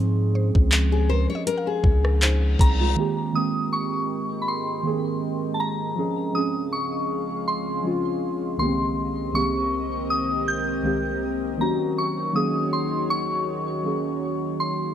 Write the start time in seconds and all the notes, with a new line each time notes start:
Already playing: G#2 F3 G#3 C4 C#4 G#4
0.35 C5
0.55 C#2, kick
0.72 clap, closed hi-hat
0.92 G#4
1.09 A#4 C5
1.30 C#5
1.35 D#5
1.47 A#4, closed hi-hat, reverse cymbal
1.58 F5
1.67 G#4
1.84 C#2, kick
2.05 cross-stick
2.22 D#4 C5, clap, closed hi-hat
2.59 C2 C4 G#4 A#5, kick, closed hi-hat
2.80 G#3 F4
2.96 D#3 G#3 A#3 C4 A#4 D#5 G5
3.00 G4
3.33 D#3 G#3 A#3 C4 D#6
3.37 G4
3.73 C#6
4.42 B5
4.48 C6
4.83 D#3 G#3 A#3 C4
4.87 G#4
5.54 A5
5.60 A#5
5.95 C#3 F3 G#3 C4 C#4 G#4 F5
5.99 G#4
6.33 F3 G#3 C4 C#4 D#6
6.37 G#4
6.73 C#6
7.48 C6
7.82 F3 G#3 C4 C#4
7.87 F4
8.57 C2 D#3 G#3 A#3 B3 C4 G4 A#4 D#5 C6
8.62 G4
8.67 C4
9.32 C2 D#3 G#3 A#3 C4 C#6
9.37 G4
10.10 D#6
10.48 G6
10.82 C2 D#3 G#3 A#3 C4
10.87 G4
11.57 D#3 F#3 A#3 C#4 D#4 F#4 C#5 A#5
11.62 F#4
11.98 C#6
12.33 D#3 F#3 A#3 C#4 D#6
12.37 G#4
12.73 C6
13.10 C#6
13.82 D#3 F#3 A#3 C#4
13.87 G#4
14.60 C6